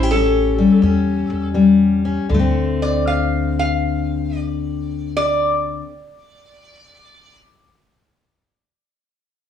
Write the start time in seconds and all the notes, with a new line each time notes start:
Already playing: A1 C#4 E4 C5
0.03 G4
0.11 E3 A4
0.15 C#4
0.58 G3
0.82 E2 C#4
1.30 E2
1.54 E3 G3
2.05 C#4
2.29 D2 D3
2.34 A3
2.39 C4
2.82 D5
3.07 F5
3.59 F5
4.36 D5
5.17 D5